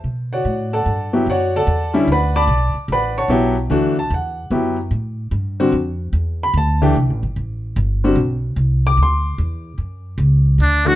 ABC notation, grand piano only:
X:1
M:3/4
L:1/8
Q:"Swing" 1/4=148
K:Bm
V:1 name="Grand piano"
z [Fcdf]2 [Adfa]2 z | [Fcdf] [Adfa]2 z [Bdfb] [dabd']- | [dabd'] z [Bdfb] [cfac']2 z | z a f2 z2 |
z6 | z b a2 z2 | z6 | z d' =c'2 z2 |
z6 |]
V:2 name="Grand piano"
z4 z [F,B,EG] | z3 [D,G,CE] z2 | z4 [F,B,EG] z | [E,A,DF] z3 [F,B,EG] z |
z3 [D,G,=CF] z2 | z3 [E,A,DG] z2 | z3 [D,G,=CF] z2 | z6 |
z4 z [E,A,DF] |]